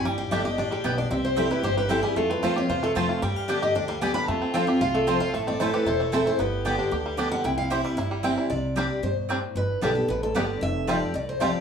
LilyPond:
<<
  \new Staff \with { instrumentName = "Steel-string acoustic guitar" } { \time 4/4 \key c \major \tempo 4 = 227 g''8 f''8 e''8 ees''8 d''8 g'8 b'8 d''8 | e''8 c''8 a'8 b'8 c''8 b'8 a'8 aes'8 | a'8 b'8 c''8 des''8 c''8 a'8 r4 | g''8 f''8 e''8 ees''8 d''8 f''8 aes''8 b''8 |
a''4 g''8 e''8 f''8 a'8 c''8 f''8 | e''8 d''8 des''8 b'8 c''8 e'8 a'8 c''8 | b'4 r2 r8 fis''8 | g''8 f''8 e''8 d''8 e''4.~ e''16 r16 |
d''2 c''2 | b'4 a'4 b'8 a'8 d''4 | e''4 d''4 d''8 c''8 d''4 | }
  \new Staff \with { instrumentName = "Mandolin" } { \time 4/4 \key c \major r4 <b g' d'' g''>8 r4. <b g' d'' g''>8 r8 | r4 <c' e' c'' g''>8 r4. <c' e' c'' g''>8 r8 | r4 <c' f' c'' a''>8 r4. <c' f' c'' a''>8 r8 | r4 <b g' d'' g''>8 r4. <b g' d'' g''>8 r8 |
r4 <c' f' c'' a''>8 r4. <c' f' c'' a''>8 r8 | r4 <a e' c'' a''>8 r4. <a e' c'' a''>8 r8 | r4 <b g' d'' g''>8 r4. <b g' d'' g''>8 r8 | r4 <c' e' c'' g''>8 r4. <c' e' c'' g''>8 r8 |
r4 <c' g' d'' g''>8 r4. <c' g' d'' g''>8 r8 | r4 <b g' d'' g''>8 r4. <b g' d'' g''>8 r8 | r4 <a f' c'' g''>8 r4. <a f' c'' g''>8 r8 | }
  \new Staff \with { instrumentName = "Fiddle" } { \time 4/4 \key c \major g'1 | g'1 | f'1 | g'2.~ g'8 r8 |
f'1 | a'1 | g'1 | e'2.~ e'8 r8 |
r1 | r1 | r1 | }
  \new Staff \with { instrumentName = "Five-string banjo" } { \time 4/4 \key c \major g4 d'8 g'8 d'8 g8 b8 d'8 | c'4 c'8 e'8 g'8 g8 e'8 g8 | a8 c'8 f'8 g'8 f'8 a8 c'8 f'8 | g4 d'8 g'8 d'8 g8 b8 d'8 |
a8 c'8 f'8 g'8 f'8 a8 c'8 f'8 | a8 c'8 e'8 g'8 e'8 a8 c'8 e'8 | b4 b8 d'8 g'8 g8 d'8 g8 | e'4 g'8 g8 e'8 g8 c'8 e'8 |
r4 <g c' d'>8 r4. <g c' d'>8 r8 | r4 <g b d'>8 r4. <g b d'>8 r8 | r4 <g c' f'>8 r4. <g c' f'>8 r8 | }
  \new Staff \with { instrumentName = "Steel-string acoustic guitar" } { \clef bass \time 4/4 \key c \major << { r4 <d g b g'>8 <b g'>8 r2 | r4 <e g c' e'>4 r4 <e g c' e'>4 | r4 <f a c' f'>8 <c' f'>8 r4 <f a c' f'>4 | r4 <d g b g'>4 r4 <d g b g'>4 |
r4 <f a c' f'>8 <c' f'>8 r4 <f a c' f'>4 | r4 <e a c' e'>4 r4 <e a c' e'>4 | r4 <d g b g'>4 r4 <d g b g'>4 | r4 <e g c' e'>4 r4 <e g c' e'>4 |
r4 <g c' d' g'>4 r2 | r4 <d g b g'>8 <b g'>8 r4 <d g b g'>4 | r4 <f g c' g'>4 r4 <f g c' g'>4 | } \\ { g,2 a,4 b,4 | c2 g,2 | f,2 c2 | g,2 d2 |
f,2 c2 | a,2 e,2 | g,2 d2 | c2 g,2 |
c2 b,4 a,4 | g,2 d2 | f,2 a,2 | } >> }
  \new Staff \with { instrumentName = "Upright bass" } { \clef bass \time 4/4 \key c \major g,,4 g,,4 a,,4 b,,4 | c,2 g,,2 | f,4 d,4 e,4 f,4 | g,2 d,2 |
f,2 c,2 | a,,2 e,,2 | g,,2 d,2 | c,2 g,,2 |
c,2 g,2 | g,,4 b,,4 a,,4 g,,4 | f,,2 c,2 | }
>>